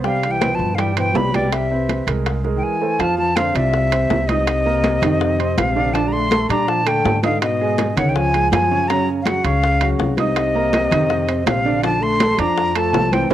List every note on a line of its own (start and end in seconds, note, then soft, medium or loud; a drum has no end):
0.00 0.54 C2 medium
0.00 0.34 G3 medium
0.04 0.31 C3 medium
0.04 0.35 G4 medium
0.04 0.33 F5 medium
0.04 0.35 G5 medium
0.04 high bongo medium
0.04 high conga soft
0.23 high conga soft
0.23 high timbale medium
0.29 0.55 E3 medium
0.29 0.56 G5 medium
0.41 0.72 B2 medium
0.41 0.72 B4 medium
0.41 0.72 C5 medium
0.41 high bongo medium
0.41 high conga loud
0.41 high timbale medium
0.41 low timbale medium
0.53 0.74 F3 medium
0.53 0.76 A5 medium
0.59 1.11 G2 medium
0.59 high bongo soft
0.59 high conga soft
0.73 0.78 D3 medium
0.73 0.81 F5 medium
0.77 0.95 E3 medium
0.77 0.93 G3 medium
0.77 0.93 G4 medium
0.77 0.94 G5 medium
0.77 0.98 G5 medium
0.77 high bongo medium
0.77 high conga soft
0.77 high timbale medium
0.95 1.27 B2 medium
0.95 1.16 E3 medium
0.95 1.28 B4 medium
0.95 1.28 C5 medium
0.95 1.18 G5 medium
0.95 high bongo soft
0.95 high conga soft
0.95 high timbale medium
1.14 2.01 C2 medium
1.14 1.34 G3 medium
1.14 1.37 B5 medium
1.14 high bongo soft
1.14 low bongo medium
1.14 high conga medium
1.14 low timbale medium
1.33 1.52 B2 medium
1.33 1.64 G3 medium
1.33 1.65 G4 medium
1.33 1.54 D5 medium
1.33 1.65 G5 medium
1.33 high bongo soft
1.33 high conga medium
1.33 high timbale medium
1.51 2.07 C3 medium
1.51 2.08 E5 medium
1.51 high bongo medium
1.51 high conga soft
1.51 high timbale medium
1.71 2.01 C4 medium
1.71 2.01 B4 medium
1.71 2.01 C5 medium
1.71 high conga soft
1.89 high bongo medium
1.89 high conga medium
1.89 high timbale medium
1.89 low timbale medium
2.07 2.59 C2 medium
2.07 2.38 G#3 medium
2.07 2.38 G#4 medium
2.07 2.38 A#4 medium
2.07 high bongo soft
2.07 high timbale medium
2.26 high bongo medium
2.26 high conga soft
2.26 high timbale medium
2.44 2.75 G#3 medium
2.44 2.75 G#4 medium
2.44 2.75 A#4 medium
2.44 high bongo soft
2.44 high conga soft
2.56 2.64 D#3 medium
2.56 2.65 G5 medium
2.62 3.01 E3 medium
2.62 3.02 G#5 medium
2.81 2.96 A3 medium
2.81 2.97 A4 medium
2.81 2.97 C5 medium
2.99 3.51 F2 medium
2.99 3.18 F3 medium
2.99 3.30 F3 medium
2.99 3.31 F4 medium
2.99 3.31 F5 medium
2.99 3.18 A5 loud
2.99 high bongo medium
2.99 high conga soft
2.99 high timbale medium
3.18 3.39 F3 medium
3.18 3.38 A5 medium
3.18 high bongo soft
3.18 high conga soft
3.36 3.56 D3 medium
3.36 3.52 C4 medium
3.36 3.52 C5 medium
3.36 3.57 F5 loud
3.36 3.52 C6 medium
3.36 high bongo medium
3.36 high conga medium
3.36 high timbale medium
3.55 4.06 C2 medium
3.55 4.29 C3 medium
3.55 3.85 F4 medium
3.55 3.86 D5 medium
3.55 4.29 E5 loud
3.55 high bongo soft
3.55 high conga soft
3.55 high timbale medium
3.74 high bongo medium
3.74 high conga soft
3.92 4.22 C4 medium
3.92 4.23 C5 medium
3.92 4.23 C6 medium
3.92 high bongo soft
3.92 high conga soft
3.92 high timbale medium
4.10 4.97 C2 medium
4.10 high bongo medium
4.10 low bongo medium
4.10 high conga medium
4.10 low timbale medium
4.28 5.57 C3 medium
4.28 4.60 D#4 medium
4.28 5.59 D#5 loud
4.28 4.60 D#5 medium
4.28 4.60 D#6 medium
4.28 high conga medium
4.28 high timbale medium
4.47 high bongo medium
4.47 high timbale medium
4.66 4.96 A#3 medium
4.66 4.96 A#4 medium
4.66 4.96 A#5 medium
4.66 high conga soft
4.84 high bongo medium
4.84 high conga loud
4.84 high timbale medium
5.02 5.54 F2 loud
5.02 5.33 D#3 medium
5.02 5.33 D#4 medium
5.02 5.33 D#5 medium
5.02 high bongo soft
5.02 high conga soft
5.02 low conga medium
5.02 high timbale medium
5.21 high bongo medium
5.21 high conga soft
5.39 5.69 C4 medium
5.39 5.70 C5 medium
5.39 5.70 C6 medium
5.39 high bongo soft
5.39 high conga soft
5.39 high timbale medium
5.57 6.44 A#1 medium
5.57 5.94 C3 medium
5.57 5.95 F5 medium
5.57 high bongo medium
5.57 low bongo medium
5.57 high conga medium
5.57 high timbale medium
5.76 5.91 D3 medium
5.76 5.91 D4 medium
5.76 5.92 D5 medium
5.76 high bongo soft
5.93 6.25 D3 medium
5.93 6.08 F3 medium
5.93 6.25 D4 medium
5.93 6.26 D5 medium
5.93 6.09 A5 loud
5.93 high bongo medium
5.93 high conga soft
5.93 high timbale medium
6.06 6.15 G3 medium
6.06 6.14 A#5 medium
6.13 6.48 A3 medium
6.13 6.49 C6 loud
6.13 high bongo soft
6.13 high conga soft
6.31 6.47 A3 medium
6.31 6.47 A4 medium
6.31 6.47 A5 medium
6.31 high bongo medium
6.31 high conga loud
6.31 high timbale medium
6.49 7.01 A#2 medium
6.49 6.69 G3 medium
6.49 6.80 D4 medium
6.49 6.81 D5 medium
6.49 6.70 A#5 loud
6.49 6.81 D6 medium
6.49 high bongo soft
6.49 high conga soft
6.49 high timbale medium
6.67 6.87 F3 medium
6.67 6.89 A5 loud
6.67 high bongo medium
6.67 high conga soft
6.86 7.22 D3 medium
6.86 7.17 A3 medium
6.86 7.17 A4 medium
6.86 7.23 G5 loud
6.86 7.17 A5 medium
6.86 high bongo soft
6.86 high conga soft
6.86 high timbale medium
7.05 7.91 G#2 medium
7.05 high bongo medium
7.05 low bongo medium
7.05 high conga medium
7.05 low timbale medium
7.23 7.40 D3 medium
7.23 7.54 D#4 medium
7.23 7.54 D#5 medium
7.23 7.41 F5 medium
7.23 7.54 D#6 medium
7.23 high conga medium
7.23 high timbale medium
7.41 7.97 B2 medium
7.41 7.99 D#5 loud
7.41 high bongo medium
7.41 high conga soft
7.41 high timbale medium
7.60 7.91 G#3 medium
7.60 7.91 G#4 medium
7.60 7.91 G#5 medium
7.60 high conga soft
7.78 high bongo medium
7.78 high conga loud
7.78 high timbale medium
7.95 8.48 C#2 medium
7.95 8.28 C#3 medium
7.95 8.08 D#3 medium
7.95 8.28 C#4 medium
7.95 8.28 C#5 medium
7.95 8.11 F#5 loud
7.95 high bongo soft
7.95 high conga soft
7.95 low conga medium
7.95 high timbale loud
8.08 8.16 D#3 medium
8.08 8.17 G5 medium
8.15 8.51 F3 medium
8.15 8.51 G#5 medium
8.15 high bongo medium
8.15 high conga soft
8.34 8.65 G#3 medium
8.34 8.65 G#4 medium
8.34 8.65 G#5 medium
8.34 high bongo soft
8.34 high conga soft
8.34 high timbale medium
8.51 9.39 F#2 medium
8.51 8.90 F3 medium
8.51 8.89 G#5 medium
8.51 high bongo medium
8.51 low bongo medium
8.51 high conga medium
8.51 high timbale loud
8.51 low timbale medium
8.71 8.86 C#3 medium
8.71 8.86 C#4 medium
8.71 8.87 C#5 medium
8.71 high bongo soft
8.88 9.20 C#3 medium
8.88 9.07 F#3 medium
8.88 9.20 C#4 medium
8.88 9.20 C#5 medium
8.88 9.07 A#5 loud
8.88 high bongo medium
8.88 high conga soft
8.88 high timbale medium
9.08 high bongo soft
9.08 high conga soft
9.21 9.25 C#3 medium
9.21 9.43 C#3 medium
9.21 9.27 F5 medium
9.26 9.42 F#3 medium
9.26 9.42 F#4 medium
9.26 9.46 F#5 medium
9.26 9.42 F#5 medium
9.26 high bongo medium
9.26 high conga medium
9.26 high timbale medium
9.43 9.96 C#2 medium
9.43 10.18 C#3 medium
9.43 9.75 C#4 medium
9.43 9.75 C#5 medium
9.43 9.87 F5 loud
9.43 9.75 C#6 medium
9.43 high bongo soft
9.43 high conga soft
9.43 high timbale medium
9.63 high bongo medium
9.63 high conga soft
9.81 10.12 F#3 medium
9.81 10.12 F#4 medium
9.81 10.12 F5 medium
9.81 high bongo soft
9.81 high conga soft
9.81 high timbale medium
9.99 10.86 C2 medium
9.99 high bongo medium
9.99 low bongo medium
9.99 high conga medium
10.17 11.45 C3 medium
10.17 10.49 D#4 medium
10.17 11.47 D#5 medium
10.17 10.49 D#5 medium
10.17 10.49 D#6 medium
10.17 high conga medium
10.17 high timbale medium
10.36 high bongo medium
10.36 high conga soft
10.36 high timbale medium
10.55 10.85 A#3 medium
10.55 10.86 A#4 medium
10.55 10.86 A#5 medium
10.55 high conga soft
10.73 high bongo medium
10.73 high conga medium
10.73 high timbale medium
10.91 11.43 F2 loud
10.91 11.22 D#3 medium
10.91 11.22 D#4 medium
10.91 11.23 D#5 medium
10.91 high bongo soft
10.91 high conga soft
10.91 low conga medium
10.91 high timbale loud
11.10 high bongo medium
11.10 high conga soft
11.28 11.59 C4 medium
11.28 11.59 C5 medium
11.28 11.59 C6 medium
11.28 high bongo soft
11.28 high conga soft
11.28 high timbale medium
11.45 12.33 A#1 medium
11.45 11.80 C3 medium
11.45 11.82 F5 medium
11.45 high bongo medium
11.45 low bongo medium
11.45 high conga medium
11.45 high timbale loud
11.45 low timbale medium
11.65 11.80 D3 medium
11.65 11.81 D4 medium
11.65 11.81 D5 medium
11.65 high bongo soft
11.82 12.14 D3 medium
11.82 12.01 F3 medium
11.82 12.14 D4 medium
11.82 12.14 D5 medium
11.82 12.04 A5 medium
11.82 high bongo medium
11.82 high conga soft
11.82 high timbale medium
12.00 12.40 A3 medium
12.00 12.41 C6 loud
12.00 high bongo soft
12.00 high conga soft
12.20 12.36 A3 medium
12.20 12.36 A4 medium
12.20 12.36 A5 medium
12.20 high bongo medium
12.20 high conga medium
12.20 high timbale medium
12.38 12.90 F2 loud
12.38 12.75 F3 medium
12.38 12.69 D4 medium
12.38 12.69 D5 medium
12.38 12.77 A#5 loud
12.38 12.70 D6 medium
12.38 high bongo soft
12.38 high conga soft
12.38 high timbale medium
12.58 high bongo medium
12.58 high conga soft
12.75 13.13 F3 medium
12.75 13.06 A3 medium
12.75 13.06 A4 medium
12.75 13.14 A5 loud
12.75 13.06 A5 medium
12.75 high bongo soft
12.75 high conga soft
12.75 high timbale medium
12.93 13.28 C2 medium
12.93 high bongo medium
12.93 low bongo medium
12.93 high conga medium
12.93 low timbale medium
13.12 13.30 E3 medium
13.12 13.28 C4 medium
13.12 13.28 C5 medium
13.12 13.31 G5 medium
13.12 13.28 C6 medium
13.12 high conga medium
13.12 high timbale medium
13.30 13.34 C2 medium
13.30 13.34 E3 medium
13.30 13.34 G4 loud
13.30 13.34 A#4 loud
13.30 13.34 C5 loud
13.30 low bongo loud
13.30 high conga loud